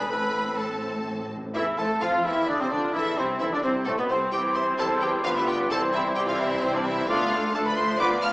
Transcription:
Already playing: cor anglais G#4
0.09 double bass section A1, cello section A2, timpani A2, viola section A3 C4, french horn section A3 C4, cor anglais A4, clarinet B4, violin section B4 B5, flute section B5
0.18 timpani A2
0.26 timpani A2
0.34 timpani A2
0.42 timpani A2
0.50 timpani A2
0.58 timpani A2, violin section A4 A5, clarinet A4, flute section A5
0.65 timpani A2
0.73 timpani A2
0.81 timpani A2
0.88 timpani A2
0.96 timpani A2
1.04 timpani A2
1.12 timpani A2
1.19 timpani A2
1.28 timpani A2
1.35 timpani A2
1.44 timpani A2
1.55 double bass section E2, cello section E3, bassoon E3, cor anglais E4, viola section E4, clarinet E4, violin section E4 E5, french horn section E4, flute section A4, trumpet E5
1.78 double bass section A2, cello section A3, bassoon A3, clarinet A4, viola section A4, violin section A4 A5, cor anglais A4, french horn section A4, flute section C5, trumpet A5
2.02 double bass section F2, cello section F3, bassoon F3, viola section F4, clarinet F4, cor anglais F4, violin section F4 F5, french horn section F4, flute section A4, trumpet F5
2.24 double bass section E2, cello section E3, bassoon E3, viola section E4, clarinet E4, cor anglais E4, violin section E4 E5, french horn section E4, flute section G4, trumpet E5
2.48 double bass section D2, cello section D3, bassoon D3, viola section D4, french horn section D4, cor anglais D4, violin section D4 D5, clarinet D4, flute section G#4, trumpet D5
2.59 cello section C3, bassoon C3, viola section C4, cor anglais C4, clarinet C4, french horn section C4, violin section C4 C5, flute section E4, trumpet C5
2.70 double bass section D2, bassoon D3, cello section D3, viola section D4, cor anglais D4, clarinet D4, violin section D4 D5, french horn section D4, flute section F4, trumpet D5
2.93 double bass section E2, timpani A2, bassoon E3, cello section E3, viola section E4, violin section E4 E5, clarinet E4, cor anglais E4, flute section A4, trumpet E5
2.97 french horn section E4
3.15 double bass section C2, cello section C3, bassoon C3, viola section C4, violin section C4 C5, clarinet C4, french horn section C4, cor anglais C4, flute section E4, trumpet C5
3.40 double bass section E2, cello section E3, bassoon E3, viola section E4, cor anglais E4, violin section E4 E5, clarinet E4, french horn section E4, flute section A4, trumpet E5
3.51 cello section D3, bassoon D3, viola section D4, cor anglais D4, violin section D4 D5, french horn section D4, clarinet D4, flute section F4, trumpet D5
3.63 double bass section C2, bassoon C3, cello section C3, viola section C4, cor anglais C4, french horn section C4, violin section C4 C5, clarinet C4, flute section E4, trumpet C5
3.86 double bass section A1, bassoon A2, cello section A2, viola section A3, french horn section A3, cor anglais A3, violin section A3 A4, clarinet A3, flute section C4, trumpet A4
3.96 bassoon B2, cello section B2, viola section B3, french horn section B3, cor anglais B3, violin section B3 B4, flute section D4, trumpet B4
4.00 clarinet B3
4.08 double bass section C2, bassoon C3, cello section C3, french horn section C4, viola section C4, violin section C4 C5, cor anglais C4, flute section E4, trumpet C5
4.13 clarinet C4
4.32 double bass section C2, cello section C3, viola section E3 C4, french horn section G3 E4, bassoon C4, clarinet E4, violin section G4 G5, cor anglais G4, flute section C5, trumpet C5
4.55 violin section C5 C6, cor anglais C5, flute section E5
4.78 double bass section E2, cello section E3, viola section G3, violin section A4 A5, cor anglais A4, flute section C5
5.01 violin section G4 G5, cor anglais G4, flute section B4
5.24 double bass section D2, cello section D3, french horn section G3 F4, viola section B3, bassoon B3, violin section F4 F5, clarinet F4, cor anglais F4, flute section B4, trumpet B4
5.35 violin section E4 E5, cor anglais E4, flute section G4
5.46 violin section G4 G5, cor anglais G4, flute section B4
5.70 double bass section C2, cello section C3, viola section E3 C4, bassoon G3, french horn section G3 E4, clarinet E4, violin section A4 A5, cor anglais A4, flute section C5, trumpet C5
5.93 violin section E4 E5, cor anglais E4, flute section G4
6.16 viola section E3 C4, french horn section G3 E4, violin section G4 G5, cor anglais G4, flute section C5, trumpet C5
6.28 violin section F4 F5, cor anglais F4, flute section A4
6.39 cor anglais E4, violin section E4 E5, flute section G4
6.61 viola section E3, french horn section G3 E4, violin section C4 C5, cor anglais C4, flute section E4, trumpet C5
6.74 violin section D4 D5, cor anglais D4, flute section F4
6.85 violin section E4 E5, cor anglais E4, flute section G4
7.08 double bass section D2, cello section D2, viola section D3 B3, french horn section A3 D4, bassoon A3, clarinet D4, violin section F4 F5, cor anglais F4, flute section A4, trumpet D5
7.32 viola section A3
7.53 viola section F3 A3, bassoon A3, clarinet D4, violin section A4 A5, cor anglais A4, flute section D5
7.66 cor anglais B4, violin section B4 B5, flute section D5
7.76 cor anglais C5, violin section C5 C6, flute section E5
7.99 cello section D2, double bass section D2, viola section B3, french horn section B3 F4, bassoon B3, clarinet F4, trumpet B4, cor anglais D5, violin section D5 D6, flute section F5
8.23 violin section F5 F6, cor anglais F5, flute section A5

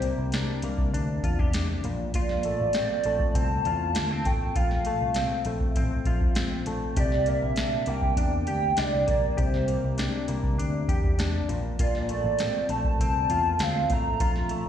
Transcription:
Already playing: clean electric guitar C3 D4 G4, soft synth lead C5
0.02 clean electric guitar A#3, closed hi-hat
0.18 picked electric bass C2
0.32 clean electric guitar D4, snare, closed hi-hat
0.62 picked electric bass C2, clean electric guitar A#3, closed hi-hat
0.78 kick
0.94 picked electric bass D2, clean electric guitar D4, closed hi-hat
1.23 picked electric bass E2, clean electric guitar F4, kick, closed hi-hat
1.39 clean electric guitar G4, kick
1.53 clean electric guitar D4, snare, closed hi-hat
1.84 picked electric bass A#1, clean electric guitar A#2, closed hi-hat
2.14 clean electric guitar A#2 F4, soft synth lead D5, kick, closed hi-hat
2.29 snare
2.43 clean electric guitar A3, closed hi-hat
2.60 picked electric bass A1
2.73 clean electric guitar C4, snare, closed hi-hat
3.04 picked electric bass A#1, clean electric guitar A3, closed hi-hat
3.19 kick
3.34 picked electric bass C2, clean electric guitar C4, soft synth lead A5, kick, closed hi-hat
3.65 picked electric bass E2, clean electric guitar F4, closed hi-hat
3.95 picked electric bass D2, clean electric guitar A#3, snare, closed hi-hat
4.11 clean electric guitar C4
4.25 picked electric bass A1, clean electric guitar A3, soft synth lead G5, kick, closed hi-hat
4.56 picked electric bass A#1, clean electric guitar F4, soft synth lead F5, kick, closed hi-hat
4.71 snare
4.85 clean electric guitar A3, closed hi-hat
5.01 picked electric bass C2
5.14 clean electric guitar C4, snare, closed hi-hat
5.45 picked electric bass A#1, clean electric guitar A3, closed hi-hat
5.60 kick
5.75 picked electric bass A1, clean electric guitar C4, kick, closed hi-hat
6.05 picked electric bass A#1, clean electric guitar F4, kick, closed hi-hat
6.21 kick
6.35 clean electric guitar C4, snare, closed hi-hat
6.66 picked electric bass A#1, clean electric guitar A3, closed hi-hat
6.96 picked electric bass C2, clean electric guitar C3 G4, soft synth lead D5, kick, closed hi-hat
7.12 snare
7.26 clean electric guitar A#3, soft synth lead E5, closed hi-hat
7.42 picked electric bass A#1
7.56 clean electric guitar D4, snare, closed hi-hat
7.86 picked electric bass C2, clean electric guitar A#3, soft synth lead G5, closed hi-hat
8.02 kick
8.17 picked electric bass E2, clean electric guitar D4, kick, closed hi-hat
8.47 picked electric bass D2, clean electric guitar G4, soft synth lead G5, closed hi-hat
8.77 picked electric bass C2, clean electric guitar D4, soft synth lead D5, snare, closed hi-hat
9.07 picked electric bass A#1, clean electric guitar A#3, soft synth lead D5, kick, closed hi-hat
9.37 picked electric bass C2, clean electric guitar C3 G4, soft synth lead C5, kick, closed hi-hat
9.54 snare
9.68 clean electric guitar A#3, closed hi-hat
9.84 picked electric bass C2
9.98 clean electric guitar D4, snare, closed hi-hat
10.28 picked electric bass C2, clean electric guitar A#3, closed hi-hat
10.43 kick
10.58 picked electric bass D2, clean electric guitar D4, closed hi-hat
10.88 picked electric bass E2, clean electric guitar G4, kick, closed hi-hat
11.04 kick
11.19 clean electric guitar D4, snare, closed hi-hat
11.49 picked electric bass A#1, clean electric guitar A#2, closed hi-hat
11.79 clean electric guitar A#2 F4, soft synth lead D5, kick, closed hi-hat
11.95 snare
12.09 clean electric guitar A3, closed hi-hat
12.24 picked electric bass A1
12.39 clean electric guitar C4, snare, closed hi-hat
12.69 picked electric bass A#1, clean electric guitar A3, soft synth lead A5, closed hi-hat
12.84 kick
12.99 picked electric bass C2, clean electric guitar C4, kick, closed hi-hat
13.30 picked electric bass E2, clean electric guitar F4, closed hi-hat
13.59 picked electric bass D2, clean electric guitar C4, soft synth lead F5, snare, closed hi-hat
13.90 picked electric bass A1, clean electric guitar A3, soft synth lead A#5, kick, closed hi-hat
14.20 picked electric bass A#1, clean electric guitar F4, kick, closed hi-hat
14.36 snare
14.49 clean electric guitar A3, closed hi-hat
14.66 picked electric bass C2

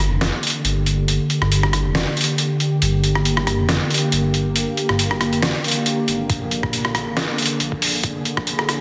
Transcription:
Already playing: synth drone D3 A#3 G4
0.11 detuned saw bass F1
0.21 snare, closed hi-hat
0.43 closed hi-hat
0.47 closed hi-hat
0.50 closed hi-hat
0.64 detuned saw bass G1, closed hi-hat
0.86 closed hi-hat
1.08 closed hi-hat
1.30 closed hi-hat
1.41 detuned saw bass G1, cross-stick
1.52 closed hi-hat
1.63 cross-stick
1.73 cross-stick, closed hi-hat
1.85 detuned saw bass F1
1.95 snare, closed hi-hat
2.17 closed hi-hat
2.21 closed hi-hat
2.24 closed hi-hat
2.38 closed hi-hat
2.60 closed hi-hat
2.82 detuned saw bass G1, closed hi-hat
3.04 closed hi-hat
3.15 cross-stick
3.25 closed hi-hat
3.37 cross-stick
3.47 cross-stick, closed hi-hat
3.59 detuned saw bass F1
3.69 snare, closed hi-hat
3.90 closed hi-hat
3.94 closed hi-hat
3.98 closed hi-hat
4.12 detuned saw bass G1, closed hi-hat
4.34 closed hi-hat
4.56 closed hi-hat
4.77 closed hi-hat
4.89 detuned saw bass G1, cross-stick
4.99 closed hi-hat
5.11 cross-stick
5.21 cross-stick, closed hi-hat
5.33 detuned saw bass F1, closed hi-hat
5.42 snare, closed hi-hat
5.64 closed hi-hat
5.68 closed hi-hat
5.71 closed hi-hat
5.86 closed hi-hat
6.08 detuned saw bass G#1, closed hi-hat
6.30 detuned saw bass A#1, synth drone G#4, kick, closed hi-hat
6.51 closed hi-hat
6.63 kick, cross-stick
6.73 closed hi-hat
6.85 cross-stick
6.95 cross-stick, closed hi-hat
7.07 detuned saw bass G#1
7.17 snare, closed hi-hat
7.38 closed hi-hat
7.42 closed hi-hat
7.46 closed hi-hat
7.60 detuned saw bass A#1, closed hi-hat
7.72 kick
7.82 open hi-hat
8.03 kick, closed hi-hat
8.25 closed hi-hat
8.37 detuned saw bass A#1, kick, cross-stick
8.47 closed hi-hat
8.59 cross-stick
8.69 cross-stick, closed hi-hat

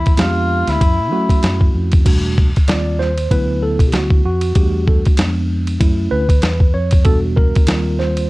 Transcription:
Already playing: fingered electric bass E2, tenor saxophone E4
0.06 kick, ride
0.15 fingered electric bass F2, tine electric piano G#3 B3 D4 G4, tenor saxophone E4, hi-hat pedal, ride
0.19 tenor saxophone F4, snare
0.67 fingered electric bass D2, tenor saxophone E4, snare, ride
0.81 fingered electric bass F#2, kick, ride
0.99 fingered electric bass A2
1.12 fingered electric bass F#3, tine electric piano A3 C#4 E4 F#4
1.29 kick, ride
1.43 fingered electric bass F#2, snare, hi-hat pedal, ride
1.61 kick
1.74 fingered electric bass F2
1.92 kick, ride
2.04 fingered electric bass E1, tine electric piano G3 A3 D4 F#4, kick, crash, ride
2.38 kick
2.56 kick, ride
2.68 fingered electric bass D#2, tine electric piano G3 C4 F4 D5, snare, hi-hat pedal, ride
2.99 tine electric piano C5, snare
3.18 ride
3.31 fingered electric bass D2, tine electric piano F#3 B3 E4 B4, kick, ride
3.63 tine electric piano A4
3.79 fingered electric bass B1, kick, ride
3.87 tine electric piano G4
3.92 fingered electric bass D2, tine electric piano F#4, snare, hi-hat pedal, ride
4.10 kick
4.25 fingered electric bass F2, tine electric piano F#4
4.41 ride
4.55 fingered electric bass E2, tine electric piano G3 A3 D4 F#4 G4, kick, ride
4.88 tine electric piano A4, kick
5.05 kick, ride
5.17 fingered electric bass F2, tine electric piano G#3 B3 D4, snare, hi-hat pedal, ride
5.67 ride
5.80 fingered electric bass F#2, tine electric piano A3 C#4 E4, kick, ride
6.11 fingered electric bass D2, tine electric piano B4
6.29 kick, ride
6.42 fingered electric bass E2, snare, hi-hat pedal, ride
6.60 kick
6.74 fingered electric bass F2, tine electric piano C#5
6.91 kick, ride
7.04 fingered electric bass E1, tine electric piano G3 B3 D4 F#4 A4, kick, ride
7.36 tine electric piano A#4, kick
7.55 kick, ride
7.67 fingered electric bass D#2, tine electric piano G3 C4 F4, snare, hi-hat pedal, ride
7.99 tine electric piano C5, snare
8.17 ride

